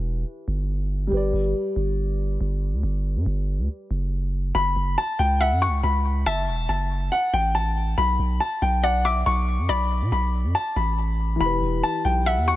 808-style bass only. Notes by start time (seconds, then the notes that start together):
Already playing: E1
0.48 G1
1.12 G1
1.33 G1
1.76 G1
2.41 G1
2.73 D2
2.83 G1
3.16 G2
3.26 G1
3.58 D2
3.91 F#1
4.55 F#1
4.76 F#1
5.19 C#2
5.51 F#2
5.67 C#2
5.83 C#2
6.26 F#1
6.48 E1
6.69 F#1
7.33 A1
7.98 B1
8.19 B1
8.62 B1
9.26 B1
9.58 F#2
9.69 B1
10.01 B2
10.12 B1
10.44 F#2
10.76 A1
11.41 E1
11.62 E1
12.05 B1
12.37 E2
12.53 B1